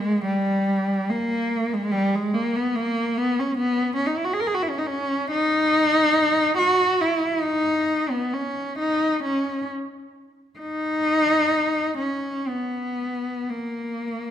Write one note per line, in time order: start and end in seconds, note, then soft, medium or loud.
0.00 0.26 G#3 medium
0.25 1.08 G3 medium
1.10 1.72 A#3 medium
1.74 1.93 G#3 medium
1.91 2.13 G3 medium
2.15 2.35 G#3 medium
2.34 2.55 A#3 medium
2.56 2.77 B3 medium
2.76 3.18 A#3 medium
3.18 3.38 B3 medium
3.39 3.59 C#4 medium
3.58 3.94 B3 medium
3.95 4.07 C#4 medium
4.06 4.17 D#4 medium
4.18 4.26 E4 medium
4.25 4.32 F#4 medium
4.33 4.39 G#4 medium
4.40 4.46 A#4 medium
4.47 4.53 G#4 medium
4.54 4.60 F#4 medium
4.62 4.69 E4 medium
4.69 4.77 C#4 medium
4.78 4.87 D#4 medium
4.87 5.31 C#4 medium
5.31 6.54 D#4 loud
6.58 7.00 F#4 medium
7.01 7.43 E4 medium
7.43 8.09 D#4 medium
8.10 8.32 B3 medium
8.33 8.78 C#4 medium
8.79 9.22 D#4 medium
9.24 9.67 C#4 medium
10.59 11.95 D#4 medium
11.99 12.47 C#4 medium
12.48 13.50 B3 medium
13.50 14.31 A#3 medium